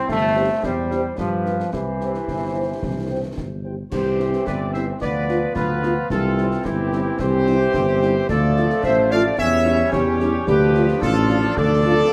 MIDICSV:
0, 0, Header, 1, 7, 480
1, 0, Start_track
1, 0, Key_signature, 0, "major"
1, 0, Tempo, 546946
1, 557, Time_signature, 2, 2, 24, 8
1, 10644, End_track
2, 0, Start_track
2, 0, Title_t, "Trumpet section"
2, 0, Program_c, 0, 61
2, 323, Note_on_c, 0, 79, 55
2, 408, Note_off_c, 0, 79, 0
2, 792, Note_on_c, 0, 79, 56
2, 880, Note_off_c, 0, 79, 0
2, 1281, Note_on_c, 0, 79, 43
2, 1367, Note_off_c, 0, 79, 0
2, 1755, Note_on_c, 0, 79, 42
2, 1842, Note_off_c, 0, 79, 0
2, 2241, Note_on_c, 0, 79, 44
2, 2327, Note_off_c, 0, 79, 0
2, 2722, Note_on_c, 0, 79, 46
2, 2808, Note_off_c, 0, 79, 0
2, 3203, Note_on_c, 0, 79, 41
2, 3288, Note_off_c, 0, 79, 0
2, 3439, Note_on_c, 0, 72, 97
2, 3886, Note_off_c, 0, 72, 0
2, 3923, Note_on_c, 0, 74, 91
2, 4154, Note_on_c, 0, 76, 95
2, 4162, Note_off_c, 0, 74, 0
2, 4263, Note_off_c, 0, 76, 0
2, 4396, Note_on_c, 0, 74, 103
2, 4844, Note_off_c, 0, 74, 0
2, 4881, Note_on_c, 0, 71, 98
2, 5327, Note_off_c, 0, 71, 0
2, 5361, Note_on_c, 0, 69, 104
2, 5806, Note_off_c, 0, 69, 0
2, 5837, Note_on_c, 0, 67, 91
2, 6317, Note_on_c, 0, 72, 112
2, 6318, Note_off_c, 0, 67, 0
2, 7242, Note_off_c, 0, 72, 0
2, 7280, Note_on_c, 0, 74, 124
2, 7759, Note_off_c, 0, 74, 0
2, 7762, Note_on_c, 0, 76, 111
2, 7869, Note_off_c, 0, 76, 0
2, 7997, Note_on_c, 0, 77, 121
2, 8105, Note_off_c, 0, 77, 0
2, 8243, Note_on_c, 0, 76, 126
2, 8687, Note_off_c, 0, 76, 0
2, 8709, Note_on_c, 0, 73, 104
2, 9160, Note_off_c, 0, 73, 0
2, 9194, Note_on_c, 0, 71, 122
2, 9670, Note_on_c, 0, 69, 118
2, 9676, Note_off_c, 0, 71, 0
2, 10119, Note_off_c, 0, 69, 0
2, 10148, Note_on_c, 0, 74, 127
2, 10644, Note_off_c, 0, 74, 0
2, 10644, End_track
3, 0, Start_track
3, 0, Title_t, "Woodwind section"
3, 0, Program_c, 1, 71
3, 0, Note_on_c, 1, 72, 71
3, 82, Note_on_c, 1, 65, 64
3, 526, Note_off_c, 1, 65, 0
3, 544, Note_off_c, 1, 72, 0
3, 554, Note_on_c, 1, 72, 66
3, 555, Note_on_c, 1, 67, 63
3, 1003, Note_off_c, 1, 67, 0
3, 1003, Note_off_c, 1, 72, 0
3, 1040, Note_on_c, 1, 71, 55
3, 1042, Note_on_c, 1, 67, 58
3, 1487, Note_off_c, 1, 67, 0
3, 1517, Note_on_c, 1, 72, 52
3, 1520, Note_off_c, 1, 71, 0
3, 1520, Note_on_c, 1, 67, 56
3, 3165, Note_off_c, 1, 67, 0
3, 3199, Note_off_c, 1, 72, 0
3, 3443, Note_on_c, 1, 67, 81
3, 3888, Note_off_c, 1, 67, 0
3, 3920, Note_on_c, 1, 71, 78
3, 4028, Note_off_c, 1, 71, 0
3, 4158, Note_on_c, 1, 72, 74
3, 4267, Note_off_c, 1, 72, 0
3, 4399, Note_on_c, 1, 71, 78
3, 4846, Note_off_c, 1, 71, 0
3, 4873, Note_on_c, 1, 65, 80
3, 5322, Note_off_c, 1, 65, 0
3, 5361, Note_on_c, 1, 65, 80
3, 5807, Note_off_c, 1, 65, 0
3, 5835, Note_on_c, 1, 64, 81
3, 6317, Note_off_c, 1, 64, 0
3, 6317, Note_on_c, 1, 67, 99
3, 7277, Note_off_c, 1, 67, 0
3, 7281, Note_on_c, 1, 69, 98
3, 7726, Note_off_c, 1, 69, 0
3, 7754, Note_on_c, 1, 72, 99
3, 7996, Note_off_c, 1, 72, 0
3, 7996, Note_on_c, 1, 74, 93
3, 8230, Note_on_c, 1, 73, 95
3, 8237, Note_off_c, 1, 74, 0
3, 8714, Note_off_c, 1, 73, 0
3, 8714, Note_on_c, 1, 67, 101
3, 9184, Note_off_c, 1, 67, 0
3, 9195, Note_on_c, 1, 67, 103
3, 9642, Note_off_c, 1, 67, 0
3, 9675, Note_on_c, 1, 65, 105
3, 10156, Note_off_c, 1, 65, 0
3, 10157, Note_on_c, 1, 69, 120
3, 10644, Note_off_c, 1, 69, 0
3, 10644, End_track
4, 0, Start_track
4, 0, Title_t, "French horn section"
4, 0, Program_c, 2, 60
4, 322, Note_on_c, 2, 72, 60
4, 324, Note_on_c, 2, 67, 66
4, 325, Note_on_c, 2, 64, 64
4, 407, Note_off_c, 2, 72, 0
4, 409, Note_off_c, 2, 67, 0
4, 410, Note_off_c, 2, 64, 0
4, 798, Note_on_c, 2, 67, 52
4, 800, Note_on_c, 2, 64, 62
4, 800, Note_on_c, 2, 72, 61
4, 884, Note_off_c, 2, 67, 0
4, 886, Note_off_c, 2, 64, 0
4, 886, Note_off_c, 2, 72, 0
4, 1283, Note_on_c, 2, 71, 48
4, 1285, Note_on_c, 2, 62, 49
4, 1285, Note_on_c, 2, 67, 49
4, 1369, Note_off_c, 2, 71, 0
4, 1370, Note_off_c, 2, 62, 0
4, 1370, Note_off_c, 2, 67, 0
4, 1767, Note_on_c, 2, 64, 46
4, 1772, Note_on_c, 2, 67, 43
4, 1772, Note_on_c, 2, 72, 41
4, 1852, Note_off_c, 2, 64, 0
4, 1856, Note_off_c, 2, 67, 0
4, 1856, Note_off_c, 2, 72, 0
4, 2245, Note_on_c, 2, 67, 41
4, 2246, Note_on_c, 2, 64, 44
4, 2247, Note_on_c, 2, 72, 47
4, 2330, Note_off_c, 2, 67, 0
4, 2331, Note_off_c, 2, 64, 0
4, 2331, Note_off_c, 2, 72, 0
4, 2725, Note_on_c, 2, 64, 42
4, 2725, Note_on_c, 2, 67, 41
4, 2727, Note_on_c, 2, 72, 40
4, 2810, Note_off_c, 2, 64, 0
4, 2810, Note_off_c, 2, 67, 0
4, 2812, Note_off_c, 2, 72, 0
4, 3204, Note_on_c, 2, 67, 41
4, 3206, Note_on_c, 2, 64, 42
4, 3207, Note_on_c, 2, 72, 41
4, 3290, Note_off_c, 2, 67, 0
4, 3291, Note_off_c, 2, 64, 0
4, 3292, Note_off_c, 2, 72, 0
4, 3682, Note_on_c, 2, 60, 64
4, 3684, Note_on_c, 2, 64, 61
4, 3685, Note_on_c, 2, 55, 61
4, 3768, Note_off_c, 2, 60, 0
4, 3770, Note_off_c, 2, 55, 0
4, 3770, Note_off_c, 2, 64, 0
4, 4162, Note_on_c, 2, 60, 64
4, 4162, Note_on_c, 2, 64, 65
4, 4164, Note_on_c, 2, 55, 69
4, 4248, Note_off_c, 2, 60, 0
4, 4248, Note_off_c, 2, 64, 0
4, 4250, Note_off_c, 2, 55, 0
4, 4644, Note_on_c, 2, 65, 65
4, 4646, Note_on_c, 2, 59, 64
4, 4648, Note_on_c, 2, 53, 61
4, 4730, Note_off_c, 2, 65, 0
4, 4731, Note_off_c, 2, 59, 0
4, 4732, Note_off_c, 2, 53, 0
4, 5119, Note_on_c, 2, 53, 68
4, 5120, Note_on_c, 2, 65, 71
4, 5121, Note_on_c, 2, 59, 62
4, 5206, Note_off_c, 2, 53, 0
4, 5206, Note_off_c, 2, 65, 0
4, 5207, Note_off_c, 2, 59, 0
4, 5596, Note_on_c, 2, 60, 71
4, 5596, Note_on_c, 2, 64, 65
4, 5597, Note_on_c, 2, 55, 70
4, 5683, Note_off_c, 2, 60, 0
4, 5683, Note_off_c, 2, 64, 0
4, 5684, Note_off_c, 2, 55, 0
4, 6079, Note_on_c, 2, 64, 75
4, 6082, Note_on_c, 2, 55, 74
4, 6084, Note_on_c, 2, 60, 73
4, 6166, Note_off_c, 2, 64, 0
4, 6168, Note_off_c, 2, 55, 0
4, 6169, Note_off_c, 2, 60, 0
4, 6555, Note_on_c, 2, 60, 71
4, 6559, Note_on_c, 2, 55, 70
4, 6559, Note_on_c, 2, 64, 72
4, 6642, Note_off_c, 2, 60, 0
4, 6645, Note_off_c, 2, 64, 0
4, 6646, Note_off_c, 2, 55, 0
4, 7039, Note_on_c, 2, 55, 75
4, 7040, Note_on_c, 2, 60, 69
4, 7040, Note_on_c, 2, 64, 74
4, 7126, Note_off_c, 2, 55, 0
4, 7126, Note_off_c, 2, 60, 0
4, 7126, Note_off_c, 2, 64, 0
4, 7522, Note_on_c, 2, 65, 69
4, 7523, Note_on_c, 2, 57, 74
4, 7526, Note_on_c, 2, 53, 74
4, 7608, Note_off_c, 2, 65, 0
4, 7609, Note_off_c, 2, 57, 0
4, 7611, Note_off_c, 2, 53, 0
4, 8006, Note_on_c, 2, 57, 79
4, 8008, Note_on_c, 2, 53, 81
4, 8009, Note_on_c, 2, 65, 82
4, 8091, Note_off_c, 2, 57, 0
4, 8092, Note_off_c, 2, 53, 0
4, 8093, Note_off_c, 2, 65, 0
4, 8480, Note_on_c, 2, 61, 79
4, 8480, Note_on_c, 2, 64, 82
4, 8483, Note_on_c, 2, 55, 77
4, 8566, Note_off_c, 2, 61, 0
4, 8566, Note_off_c, 2, 64, 0
4, 8569, Note_off_c, 2, 55, 0
4, 8952, Note_on_c, 2, 64, 78
4, 8953, Note_on_c, 2, 55, 79
4, 8955, Note_on_c, 2, 61, 85
4, 9040, Note_off_c, 2, 55, 0
4, 9040, Note_off_c, 2, 64, 0
4, 9042, Note_off_c, 2, 61, 0
4, 9432, Note_on_c, 2, 62, 77
4, 9433, Note_on_c, 2, 57, 84
4, 9433, Note_on_c, 2, 65, 81
4, 9520, Note_off_c, 2, 57, 0
4, 9520, Note_off_c, 2, 62, 0
4, 9520, Note_off_c, 2, 65, 0
4, 9907, Note_on_c, 2, 65, 82
4, 9908, Note_on_c, 2, 57, 81
4, 9909, Note_on_c, 2, 62, 79
4, 9995, Note_off_c, 2, 65, 0
4, 9996, Note_off_c, 2, 57, 0
4, 9997, Note_off_c, 2, 62, 0
4, 10390, Note_on_c, 2, 57, 77
4, 10390, Note_on_c, 2, 62, 84
4, 10391, Note_on_c, 2, 65, 81
4, 10478, Note_off_c, 2, 57, 0
4, 10478, Note_off_c, 2, 62, 0
4, 10478, Note_off_c, 2, 65, 0
4, 10644, End_track
5, 0, Start_track
5, 0, Title_t, "Trombone section"
5, 0, Program_c, 3, 61
5, 83, Note_on_c, 3, 57, 107
5, 527, Note_off_c, 3, 57, 0
5, 556, Note_on_c, 3, 55, 89
5, 1031, Note_on_c, 3, 53, 78
5, 1037, Note_off_c, 3, 55, 0
5, 1481, Note_off_c, 3, 53, 0
5, 1506, Note_on_c, 3, 52, 76
5, 3158, Note_off_c, 3, 52, 0
5, 3442, Note_on_c, 3, 60, 68
5, 3449, Note_on_c, 3, 52, 70
5, 4366, Note_off_c, 3, 60, 0
5, 4369, Note_off_c, 3, 52, 0
5, 4395, Note_on_c, 3, 53, 70
5, 4397, Note_on_c, 3, 59, 68
5, 5350, Note_on_c, 3, 52, 76
5, 5350, Note_on_c, 3, 60, 82
5, 5357, Note_off_c, 3, 53, 0
5, 5358, Note_off_c, 3, 59, 0
5, 7239, Note_off_c, 3, 60, 0
5, 7274, Note_off_c, 3, 52, 0
5, 7279, Note_on_c, 3, 57, 89
5, 7280, Note_on_c, 3, 53, 87
5, 8204, Note_off_c, 3, 53, 0
5, 8230, Note_on_c, 3, 61, 88
5, 8232, Note_on_c, 3, 55, 89
5, 8238, Note_off_c, 3, 57, 0
5, 9159, Note_off_c, 3, 61, 0
5, 9186, Note_on_c, 3, 53, 90
5, 9186, Note_on_c, 3, 62, 92
5, 9194, Note_off_c, 3, 55, 0
5, 10644, Note_off_c, 3, 53, 0
5, 10644, Note_off_c, 3, 62, 0
5, 10644, End_track
6, 0, Start_track
6, 0, Title_t, "Tuba"
6, 0, Program_c, 4, 58
6, 76, Note_on_c, 4, 31, 74
6, 431, Note_off_c, 4, 31, 0
6, 551, Note_on_c, 4, 40, 75
6, 954, Note_off_c, 4, 40, 0
6, 1039, Note_on_c, 4, 43, 65
6, 1439, Note_off_c, 4, 43, 0
6, 1519, Note_on_c, 4, 36, 59
6, 1919, Note_off_c, 4, 36, 0
6, 1999, Note_on_c, 4, 31, 51
6, 2399, Note_off_c, 4, 31, 0
6, 2481, Note_on_c, 4, 36, 55
6, 2880, Note_off_c, 4, 36, 0
6, 2954, Note_on_c, 4, 31, 52
6, 3357, Note_off_c, 4, 31, 0
6, 3432, Note_on_c, 4, 36, 72
6, 3836, Note_off_c, 4, 36, 0
6, 3917, Note_on_c, 4, 31, 73
6, 4318, Note_off_c, 4, 31, 0
6, 4389, Note_on_c, 4, 38, 74
6, 4794, Note_off_c, 4, 38, 0
6, 4866, Note_on_c, 4, 38, 78
6, 5272, Note_off_c, 4, 38, 0
6, 5355, Note_on_c, 4, 36, 92
6, 5757, Note_off_c, 4, 36, 0
6, 5836, Note_on_c, 4, 31, 78
6, 6237, Note_off_c, 4, 31, 0
6, 6318, Note_on_c, 4, 36, 91
6, 6718, Note_off_c, 4, 36, 0
6, 6800, Note_on_c, 4, 31, 88
6, 7199, Note_off_c, 4, 31, 0
6, 7272, Note_on_c, 4, 38, 105
6, 7637, Note_off_c, 4, 38, 0
6, 7757, Note_on_c, 4, 33, 89
6, 8158, Note_off_c, 4, 33, 0
6, 8235, Note_on_c, 4, 40, 91
6, 8636, Note_off_c, 4, 40, 0
6, 8706, Note_on_c, 4, 40, 91
6, 9112, Note_off_c, 4, 40, 0
6, 9191, Note_on_c, 4, 38, 109
6, 9594, Note_off_c, 4, 38, 0
6, 9669, Note_on_c, 4, 33, 110
6, 10072, Note_off_c, 4, 33, 0
6, 10151, Note_on_c, 4, 38, 102
6, 10553, Note_off_c, 4, 38, 0
6, 10644, End_track
7, 0, Start_track
7, 0, Title_t, "Drums"
7, 77, Note_on_c, 9, 35, 71
7, 77, Note_on_c, 9, 38, 60
7, 164, Note_off_c, 9, 35, 0
7, 164, Note_off_c, 9, 38, 0
7, 557, Note_on_c, 9, 35, 73
7, 557, Note_on_c, 9, 38, 77
7, 645, Note_off_c, 9, 35, 0
7, 645, Note_off_c, 9, 38, 0
7, 800, Note_on_c, 9, 38, 49
7, 888, Note_off_c, 9, 38, 0
7, 1036, Note_on_c, 9, 35, 68
7, 1036, Note_on_c, 9, 38, 69
7, 1124, Note_off_c, 9, 35, 0
7, 1124, Note_off_c, 9, 38, 0
7, 1278, Note_on_c, 9, 38, 47
7, 1366, Note_off_c, 9, 38, 0
7, 1402, Note_on_c, 9, 38, 53
7, 1490, Note_off_c, 9, 38, 0
7, 1520, Note_on_c, 9, 35, 72
7, 1520, Note_on_c, 9, 38, 68
7, 1607, Note_off_c, 9, 35, 0
7, 1607, Note_off_c, 9, 38, 0
7, 1762, Note_on_c, 9, 38, 45
7, 1849, Note_off_c, 9, 38, 0
7, 1881, Note_on_c, 9, 38, 42
7, 1968, Note_off_c, 9, 38, 0
7, 2000, Note_on_c, 9, 35, 68
7, 2000, Note_on_c, 9, 38, 51
7, 2088, Note_off_c, 9, 35, 0
7, 2088, Note_off_c, 9, 38, 0
7, 2482, Note_on_c, 9, 35, 78
7, 2482, Note_on_c, 9, 38, 53
7, 2570, Note_off_c, 9, 35, 0
7, 2570, Note_off_c, 9, 38, 0
7, 2963, Note_on_c, 9, 35, 69
7, 2963, Note_on_c, 9, 38, 63
7, 3050, Note_off_c, 9, 35, 0
7, 3050, Note_off_c, 9, 38, 0
7, 3441, Note_on_c, 9, 35, 77
7, 3441, Note_on_c, 9, 38, 72
7, 3441, Note_on_c, 9, 49, 50
7, 3529, Note_off_c, 9, 35, 0
7, 3529, Note_off_c, 9, 38, 0
7, 3529, Note_off_c, 9, 49, 0
7, 3683, Note_on_c, 9, 38, 50
7, 3771, Note_off_c, 9, 38, 0
7, 3802, Note_on_c, 9, 38, 50
7, 3889, Note_off_c, 9, 38, 0
7, 3923, Note_on_c, 9, 35, 76
7, 3923, Note_on_c, 9, 38, 75
7, 4011, Note_off_c, 9, 35, 0
7, 4011, Note_off_c, 9, 38, 0
7, 4162, Note_on_c, 9, 38, 56
7, 4249, Note_off_c, 9, 38, 0
7, 4402, Note_on_c, 9, 35, 78
7, 4402, Note_on_c, 9, 38, 76
7, 4490, Note_off_c, 9, 35, 0
7, 4490, Note_off_c, 9, 38, 0
7, 4639, Note_on_c, 9, 38, 47
7, 4727, Note_off_c, 9, 38, 0
7, 4878, Note_on_c, 9, 35, 78
7, 4878, Note_on_c, 9, 38, 69
7, 4966, Note_off_c, 9, 35, 0
7, 4966, Note_off_c, 9, 38, 0
7, 5117, Note_on_c, 9, 38, 60
7, 5205, Note_off_c, 9, 38, 0
7, 5356, Note_on_c, 9, 35, 78
7, 5356, Note_on_c, 9, 38, 76
7, 5444, Note_off_c, 9, 35, 0
7, 5444, Note_off_c, 9, 38, 0
7, 5597, Note_on_c, 9, 38, 49
7, 5685, Note_off_c, 9, 38, 0
7, 5716, Note_on_c, 9, 38, 56
7, 5804, Note_off_c, 9, 38, 0
7, 5836, Note_on_c, 9, 35, 82
7, 5836, Note_on_c, 9, 38, 73
7, 5924, Note_off_c, 9, 35, 0
7, 5924, Note_off_c, 9, 38, 0
7, 6077, Note_on_c, 9, 38, 58
7, 6165, Note_off_c, 9, 38, 0
7, 6312, Note_on_c, 9, 35, 84
7, 6312, Note_on_c, 9, 38, 77
7, 6399, Note_off_c, 9, 35, 0
7, 6399, Note_off_c, 9, 38, 0
7, 6551, Note_on_c, 9, 38, 51
7, 6639, Note_off_c, 9, 38, 0
7, 6792, Note_on_c, 9, 35, 80
7, 6792, Note_on_c, 9, 38, 78
7, 6880, Note_off_c, 9, 35, 0
7, 6880, Note_off_c, 9, 38, 0
7, 7038, Note_on_c, 9, 38, 56
7, 7125, Note_off_c, 9, 38, 0
7, 7277, Note_on_c, 9, 35, 82
7, 7277, Note_on_c, 9, 38, 80
7, 7277, Note_on_c, 9, 49, 35
7, 7364, Note_off_c, 9, 35, 0
7, 7364, Note_off_c, 9, 38, 0
7, 7364, Note_off_c, 9, 49, 0
7, 7520, Note_on_c, 9, 38, 51
7, 7608, Note_off_c, 9, 38, 0
7, 7635, Note_on_c, 9, 38, 55
7, 7723, Note_off_c, 9, 38, 0
7, 7753, Note_on_c, 9, 35, 74
7, 7753, Note_on_c, 9, 38, 74
7, 7841, Note_off_c, 9, 35, 0
7, 7841, Note_off_c, 9, 38, 0
7, 7993, Note_on_c, 9, 38, 59
7, 8081, Note_off_c, 9, 38, 0
7, 8235, Note_on_c, 9, 35, 80
7, 8235, Note_on_c, 9, 38, 74
7, 8323, Note_off_c, 9, 35, 0
7, 8323, Note_off_c, 9, 38, 0
7, 8475, Note_on_c, 9, 38, 51
7, 8562, Note_off_c, 9, 38, 0
7, 8713, Note_on_c, 9, 35, 85
7, 8713, Note_on_c, 9, 38, 88
7, 8801, Note_off_c, 9, 35, 0
7, 8801, Note_off_c, 9, 38, 0
7, 8953, Note_on_c, 9, 38, 60
7, 9041, Note_off_c, 9, 38, 0
7, 9190, Note_on_c, 9, 35, 85
7, 9190, Note_on_c, 9, 38, 78
7, 9277, Note_off_c, 9, 35, 0
7, 9277, Note_off_c, 9, 38, 0
7, 9430, Note_on_c, 9, 38, 56
7, 9518, Note_off_c, 9, 38, 0
7, 9550, Note_on_c, 9, 38, 59
7, 9638, Note_off_c, 9, 38, 0
7, 9670, Note_on_c, 9, 35, 84
7, 9670, Note_on_c, 9, 38, 77
7, 9758, Note_off_c, 9, 35, 0
7, 9758, Note_off_c, 9, 38, 0
7, 9915, Note_on_c, 9, 38, 51
7, 10003, Note_off_c, 9, 38, 0
7, 10153, Note_on_c, 9, 35, 94
7, 10153, Note_on_c, 9, 38, 70
7, 10241, Note_off_c, 9, 35, 0
7, 10241, Note_off_c, 9, 38, 0
7, 10644, End_track
0, 0, End_of_file